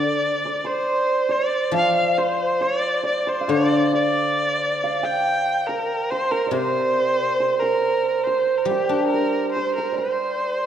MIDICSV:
0, 0, Header, 1, 4, 480
1, 0, Start_track
1, 0, Tempo, 870827
1, 10, Time_signature, 2, 2, 24, 8
1, 2890, Tempo, 862069
1, 5907, End_track
2, 0, Start_track
2, 0, Title_t, "Erhu"
2, 0, Program_c, 0, 110
2, 0, Note_on_c, 0, 74, 75
2, 366, Note_on_c, 0, 72, 73
2, 374, Note_off_c, 0, 74, 0
2, 725, Note_on_c, 0, 74, 71
2, 733, Note_off_c, 0, 72, 0
2, 962, Note_off_c, 0, 74, 0
2, 967, Note_on_c, 0, 77, 82
2, 1075, Note_off_c, 0, 77, 0
2, 1080, Note_on_c, 0, 77, 75
2, 1202, Note_on_c, 0, 72, 73
2, 1210, Note_off_c, 0, 77, 0
2, 1444, Note_on_c, 0, 74, 82
2, 1452, Note_off_c, 0, 72, 0
2, 1686, Note_off_c, 0, 74, 0
2, 1691, Note_on_c, 0, 74, 64
2, 1811, Note_on_c, 0, 72, 69
2, 1819, Note_off_c, 0, 74, 0
2, 1928, Note_on_c, 0, 74, 82
2, 1936, Note_off_c, 0, 72, 0
2, 2169, Note_off_c, 0, 74, 0
2, 2178, Note_on_c, 0, 74, 84
2, 2782, Note_on_c, 0, 79, 80
2, 2790, Note_off_c, 0, 74, 0
2, 3128, Note_on_c, 0, 70, 72
2, 3136, Note_off_c, 0, 79, 0
2, 3370, Note_on_c, 0, 72, 83
2, 3378, Note_off_c, 0, 70, 0
2, 3485, Note_on_c, 0, 70, 73
2, 3493, Note_off_c, 0, 72, 0
2, 3603, Note_on_c, 0, 72, 85
2, 3611, Note_off_c, 0, 70, 0
2, 4201, Note_on_c, 0, 70, 71
2, 4209, Note_off_c, 0, 72, 0
2, 4557, Note_on_c, 0, 72, 68
2, 4565, Note_off_c, 0, 70, 0
2, 4747, Note_on_c, 0, 70, 47
2, 4755, Note_off_c, 0, 72, 0
2, 4792, Note_on_c, 0, 67, 73
2, 4800, Note_off_c, 0, 70, 0
2, 5020, Note_off_c, 0, 67, 0
2, 5023, Note_on_c, 0, 70, 68
2, 5255, Note_off_c, 0, 70, 0
2, 5271, Note_on_c, 0, 72, 75
2, 5388, Note_off_c, 0, 72, 0
2, 5401, Note_on_c, 0, 70, 60
2, 5520, Note_on_c, 0, 72, 72
2, 5528, Note_off_c, 0, 70, 0
2, 5907, Note_off_c, 0, 72, 0
2, 5907, End_track
3, 0, Start_track
3, 0, Title_t, "Hammered dulcimer"
3, 0, Program_c, 1, 15
3, 0, Note_on_c, 1, 72, 61
3, 0, Note_on_c, 1, 74, 70
3, 248, Note_off_c, 1, 74, 0
3, 250, Note_on_c, 1, 74, 63
3, 292, Note_off_c, 1, 72, 0
3, 356, Note_on_c, 1, 72, 66
3, 709, Note_off_c, 1, 74, 0
3, 711, Note_on_c, 1, 74, 64
3, 958, Note_on_c, 1, 77, 69
3, 1199, Note_off_c, 1, 72, 0
3, 1201, Note_on_c, 1, 72, 63
3, 1436, Note_off_c, 1, 74, 0
3, 1438, Note_on_c, 1, 74, 65
3, 1669, Note_off_c, 1, 74, 0
3, 1672, Note_on_c, 1, 74, 66
3, 1799, Note_off_c, 1, 72, 0
3, 1801, Note_on_c, 1, 72, 64
3, 1876, Note_off_c, 1, 77, 0
3, 1879, Note_on_c, 1, 77, 53
3, 1915, Note_off_c, 1, 74, 0
3, 1918, Note_on_c, 1, 74, 68
3, 2165, Note_off_c, 1, 74, 0
3, 2167, Note_on_c, 1, 74, 63
3, 2663, Note_off_c, 1, 77, 0
3, 2665, Note_on_c, 1, 77, 67
3, 2773, Note_on_c, 1, 79, 76
3, 3138, Note_on_c, 1, 70, 63
3, 3261, Note_off_c, 1, 72, 0
3, 3377, Note_on_c, 1, 72, 72
3, 3485, Note_off_c, 1, 70, 0
3, 3487, Note_on_c, 1, 70, 71
3, 3530, Note_off_c, 1, 74, 0
3, 3572, Note_on_c, 1, 74, 53
3, 3604, Note_off_c, 1, 72, 0
3, 3607, Note_on_c, 1, 72, 70
3, 3900, Note_off_c, 1, 77, 0
3, 3924, Note_off_c, 1, 79, 0
3, 4089, Note_off_c, 1, 72, 0
3, 4091, Note_on_c, 1, 72, 61
3, 4212, Note_off_c, 1, 70, 0
3, 4214, Note_on_c, 1, 70, 66
3, 4573, Note_off_c, 1, 72, 0
3, 4575, Note_on_c, 1, 72, 64
3, 4821, Note_on_c, 1, 67, 56
3, 4942, Note_off_c, 1, 74, 0
3, 5056, Note_off_c, 1, 70, 0
3, 5058, Note_on_c, 1, 70, 57
3, 5295, Note_off_c, 1, 72, 0
3, 5297, Note_on_c, 1, 72, 62
3, 5414, Note_off_c, 1, 70, 0
3, 5416, Note_on_c, 1, 70, 60
3, 5495, Note_on_c, 1, 74, 49
3, 5525, Note_off_c, 1, 72, 0
3, 5527, Note_on_c, 1, 72, 64
3, 5907, Note_off_c, 1, 67, 0
3, 5907, Note_off_c, 1, 70, 0
3, 5907, Note_off_c, 1, 72, 0
3, 5907, Note_off_c, 1, 74, 0
3, 5907, End_track
4, 0, Start_track
4, 0, Title_t, "Guzheng"
4, 0, Program_c, 2, 107
4, 0, Note_on_c, 2, 50, 50
4, 946, Note_on_c, 2, 53, 52
4, 1197, Note_off_c, 2, 50, 0
4, 1923, Note_on_c, 2, 50, 51
4, 2403, Note_off_c, 2, 53, 0
4, 3364, Note_off_c, 2, 50, 0
4, 3596, Note_on_c, 2, 48, 52
4, 4789, Note_on_c, 2, 55, 55
4, 4922, Note_on_c, 2, 62, 41
4, 5035, Note_off_c, 2, 48, 0
4, 5891, Note_off_c, 2, 62, 0
4, 5907, Note_off_c, 2, 55, 0
4, 5907, End_track
0, 0, End_of_file